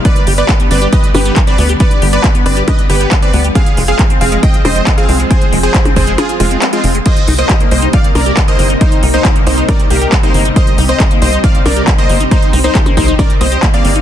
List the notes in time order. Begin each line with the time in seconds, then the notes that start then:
Already playing: G3
0.05 D3 B3 B4 D5, kick, closed hi-hat
0.16 closed hi-hat
0.27 G1 G4, open hi-hat
0.38 B3 B4 D5, closed hi-hat
0.49 B3, kick, clap, closed hi-hat
0.60 B3, closed hi-hat
0.71 G1 C4 B4 D5, open hi-hat
0.82 G4, closed hi-hat
0.93 G4 B4 D#5, kick, closed hi-hat
1.04 closed hi-hat
1.14 G1 B3 G4 B4, open hi-hat, percussion blips
1.25 B3, closed hi-hat
1.36 B3, kick, clap, closed hi-hat
1.47 C4 B4 D5, closed hi-hat
1.58 D2 B3, open hi-hat
1.69 G4, closed hi-hat
1.80 B3 B4 D5, kick, closed hi-hat
1.91 closed hi-hat
2.02 G1 G4, open hi-hat
2.13 B3 B4 D5, closed hi-hat
2.24 B3, kick, clap, closed hi-hat
2.35 B3, closed hi-hat
2.46 G1 C4 B4 D5, open hi-hat
2.57 G4, closed hi-hat
2.68 G4 B4 D#5, kick, closed hi-hat, percussion blips
2.79 closed hi-hat
2.90 G1 B3 G4 B4, open hi-hat
3.01 B3, closed hi-hat
3.11 B3, kick, clap, closed hi-hat
3.22 C4 B4 D5, closed hi-hat
3.33 D2 B3, open hi-hat
3.44 G4, closed hi-hat
3.55 F3 G#3 C4 G#4 F5, kick, closed hi-hat
3.66 closed hi-hat
3.77 F1 G#3, open hi-hat
3.88 C4 G#4 F5, closed hi-hat
3.99 C4, kick, clap, closed hi-hat
4.10 C4, closed hi-hat
4.21 F1 C4 G#4 F5, open hi-hat
4.32 G#3, closed hi-hat
4.43 G#3 D#5 G5, kick, closed hi-hat
4.54 closed hi-hat
4.65 F1 C4 C5 D#5, open hi-hat, percussion blips
4.76 C4, closed hi-hat
4.87 C4, kick, clap, closed hi-hat
4.98 C4 G#4 F5, closed hi-hat
5.09 C2 C4, open hi-hat
5.20 G#3, closed hi-hat
5.31 C4 G#4 C5, kick, closed hi-hat
5.42 closed hi-hat
5.52 F1 G#3, open hi-hat
5.63 C4 G#4 C5, closed hi-hat
5.74 C4, kick, clap, closed hi-hat
5.85 C4, closed hi-hat, percussion blips
5.96 F1 C4 G#4 C5, kick, open hi-hat
6.07 G#3, closed hi-hat
6.18 G#3 F4 G#4, closed hi-hat, percussion blips
6.29 closed hi-hat
6.40 F1 G#3 C4 F4, open hi-hat
6.51 C4, closed hi-hat
6.62 C4, clap, closed hi-hat
6.73 G#3 C4 F4, closed hi-hat
6.84 F1 C4, open hi-hat
6.95 G#3, closed hi-hat
7.06 C3 G3 A#3 D#4 C5 D#5, kick, closed hi-hat, crash
7.17 closed hi-hat
7.28 C2 D#4, open hi-hat
7.38 A#3 C5 D#5, closed hi-hat
7.49 G4, kick, clap, closed hi-hat
7.60 A#3, closed hi-hat
7.71 C2 A#3 C5 D#5, open hi-hat
7.82 D#4, closed hi-hat
7.93 D#4 D5 F5, kick, closed hi-hat
8.04 closed hi-hat
8.15 C2 A#3 A#4 D5, open hi-hat, percussion blips
8.26 G4, closed hi-hat
8.37 A#3, kick, clap, closed hi-hat
8.48 A#3 C5 D#5, closed hi-hat
8.59 G1 A#3, open hi-hat
8.70 D#4, closed hi-hat
8.81 A#3 D#4 C5, kick, closed hi-hat
8.92 closed hi-hat
9.03 C2 D#4, open hi-hat
9.14 A#3 D#4 C5, closed hi-hat
9.25 G4, kick, clap, closed hi-hat
9.36 A#3, closed hi-hat
9.47 C2 A#3 D#4 C5, open hi-hat
9.58 D#4, closed hi-hat
9.69 D#4 A#4 D5, kick, closed hi-hat, percussion blips
9.80 closed hi-hat
9.90 C2 A#3 G4 A#4, open hi-hat
10.01 G4, closed hi-hat
10.12 A#3, kick, clap, closed hi-hat
10.23 A#3 D#4 C5, closed hi-hat
10.34 G1 A#3, open hi-hat
10.45 D#4, closed hi-hat
10.56 A#3 C4 C5 D#5, kick, closed hi-hat
10.67 closed hi-hat
10.78 C2 D#4, open hi-hat
10.89 A#3 C5 D#5, closed hi-hat
11.00 G4, kick, clap, closed hi-hat
11.11 A#3, closed hi-hat
11.22 C2 A#3 C5 D#5, open hi-hat
11.33 D#4, closed hi-hat
11.44 D#4 D5 F5, kick, closed hi-hat
11.55 closed hi-hat
11.66 C2 A#3 A#4 D5, open hi-hat, percussion blips
11.76 G4, closed hi-hat
11.87 A#3, kick, clap, closed hi-hat
11.98 A#3 C5 D#5, closed hi-hat
12.09 G1 A#3, open hi-hat
12.20 D#4, closed hi-hat
12.31 A#3 D#4 C5, kick, closed hi-hat
12.42 closed hi-hat
12.53 C2 D#4, open hi-hat
12.64 A#3 D#4 C5, closed hi-hat
12.75 G4, kick, clap, closed hi-hat
12.86 A#3, closed hi-hat, percussion blips
12.97 C2 A#3 D#4 C5, kick, open hi-hat
13.08 D#4, closed hi-hat
13.19 D#4 A#4 D5, kick, closed hi-hat, percussion blips
13.30 closed hi-hat
13.41 C2 A#3 C5 D#5, open hi-hat
13.52 G4, closed hi-hat
13.63 A#3, kick, clap, closed hi-hat
13.74 A#3 D5 F5, closed hi-hat
13.85 G1 A#3, open hi-hat
13.96 D#4, closed hi-hat